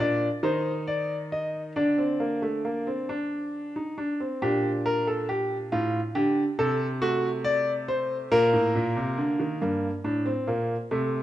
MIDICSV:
0, 0, Header, 1, 2, 480
1, 0, Start_track
1, 0, Key_signature, -2, "minor"
1, 0, Tempo, 883652
1, 957, Time_signature, 6, 3, 24, 8
1, 2400, Tempo, 867052
1, 6169, End_track
2, 0, Start_track
2, 0, Title_t, "Grand piano"
2, 0, Program_c, 0, 0
2, 0, Note_on_c, 0, 46, 64
2, 0, Note_on_c, 0, 62, 63
2, 0, Note_on_c, 0, 74, 80
2, 144, Note_off_c, 0, 46, 0
2, 145, Note_off_c, 0, 62, 0
2, 145, Note_off_c, 0, 74, 0
2, 233, Note_on_c, 0, 51, 70
2, 234, Note_on_c, 0, 63, 66
2, 236, Note_on_c, 0, 72, 74
2, 384, Note_off_c, 0, 72, 0
2, 475, Note_on_c, 0, 74, 68
2, 624, Note_off_c, 0, 74, 0
2, 718, Note_on_c, 0, 75, 67
2, 867, Note_off_c, 0, 75, 0
2, 933, Note_off_c, 0, 51, 0
2, 933, Note_off_c, 0, 63, 0
2, 956, Note_on_c, 0, 74, 56
2, 957, Note_on_c, 0, 62, 62
2, 958, Note_on_c, 0, 50, 62
2, 1074, Note_off_c, 0, 62, 0
2, 1075, Note_on_c, 0, 60, 51
2, 1193, Note_off_c, 0, 60, 0
2, 1195, Note_on_c, 0, 58, 56
2, 1313, Note_off_c, 0, 58, 0
2, 1316, Note_on_c, 0, 57, 58
2, 1434, Note_off_c, 0, 57, 0
2, 1438, Note_on_c, 0, 58, 49
2, 1556, Note_off_c, 0, 58, 0
2, 1559, Note_on_c, 0, 60, 57
2, 1676, Note_off_c, 0, 60, 0
2, 1679, Note_on_c, 0, 62, 63
2, 2029, Note_off_c, 0, 62, 0
2, 2042, Note_on_c, 0, 63, 48
2, 2138, Note_off_c, 0, 74, 0
2, 2139, Note_off_c, 0, 50, 0
2, 2158, Note_off_c, 0, 63, 0
2, 2160, Note_on_c, 0, 62, 55
2, 2277, Note_off_c, 0, 62, 0
2, 2283, Note_on_c, 0, 60, 52
2, 2398, Note_off_c, 0, 60, 0
2, 2401, Note_on_c, 0, 46, 59
2, 2401, Note_on_c, 0, 62, 61
2, 2401, Note_on_c, 0, 67, 73
2, 2550, Note_off_c, 0, 67, 0
2, 2642, Note_on_c, 0, 70, 83
2, 2758, Note_off_c, 0, 70, 0
2, 2763, Note_on_c, 0, 69, 66
2, 2878, Note_off_c, 0, 69, 0
2, 2882, Note_on_c, 0, 67, 68
2, 3031, Note_off_c, 0, 67, 0
2, 3100, Note_off_c, 0, 46, 0
2, 3121, Note_on_c, 0, 65, 76
2, 3122, Note_on_c, 0, 45, 73
2, 3270, Note_off_c, 0, 45, 0
2, 3270, Note_off_c, 0, 65, 0
2, 3359, Note_on_c, 0, 50, 81
2, 3359, Note_on_c, 0, 67, 73
2, 3508, Note_off_c, 0, 50, 0
2, 3508, Note_off_c, 0, 67, 0
2, 3601, Note_on_c, 0, 48, 67
2, 3601, Note_on_c, 0, 69, 83
2, 3748, Note_off_c, 0, 69, 0
2, 3817, Note_off_c, 0, 62, 0
2, 3838, Note_on_c, 0, 66, 91
2, 3839, Note_on_c, 0, 57, 66
2, 3986, Note_off_c, 0, 66, 0
2, 4075, Note_on_c, 0, 74, 93
2, 4224, Note_off_c, 0, 74, 0
2, 4319, Note_on_c, 0, 72, 84
2, 4466, Note_off_c, 0, 72, 0
2, 4533, Note_off_c, 0, 48, 0
2, 4534, Note_off_c, 0, 57, 0
2, 4557, Note_on_c, 0, 46, 75
2, 4558, Note_on_c, 0, 58, 81
2, 4558, Note_on_c, 0, 70, 97
2, 4673, Note_off_c, 0, 46, 0
2, 4676, Note_on_c, 0, 45, 64
2, 4792, Note_off_c, 0, 45, 0
2, 4798, Note_on_c, 0, 46, 69
2, 4914, Note_off_c, 0, 46, 0
2, 4917, Note_on_c, 0, 48, 57
2, 5034, Note_off_c, 0, 48, 0
2, 5035, Note_on_c, 0, 50, 65
2, 5153, Note_off_c, 0, 50, 0
2, 5156, Note_on_c, 0, 51, 60
2, 5258, Note_off_c, 0, 58, 0
2, 5258, Note_off_c, 0, 70, 0
2, 5274, Note_off_c, 0, 51, 0
2, 5277, Note_on_c, 0, 43, 61
2, 5277, Note_on_c, 0, 58, 58
2, 5427, Note_off_c, 0, 43, 0
2, 5427, Note_off_c, 0, 58, 0
2, 5515, Note_on_c, 0, 45, 54
2, 5515, Note_on_c, 0, 62, 64
2, 5632, Note_on_c, 0, 60, 61
2, 5634, Note_off_c, 0, 62, 0
2, 5666, Note_off_c, 0, 45, 0
2, 5753, Note_off_c, 0, 60, 0
2, 5753, Note_on_c, 0, 46, 59
2, 5753, Note_on_c, 0, 58, 57
2, 5904, Note_off_c, 0, 46, 0
2, 5904, Note_off_c, 0, 58, 0
2, 5995, Note_on_c, 0, 48, 59
2, 5995, Note_on_c, 0, 57, 64
2, 6145, Note_off_c, 0, 57, 0
2, 6169, Note_off_c, 0, 48, 0
2, 6169, End_track
0, 0, End_of_file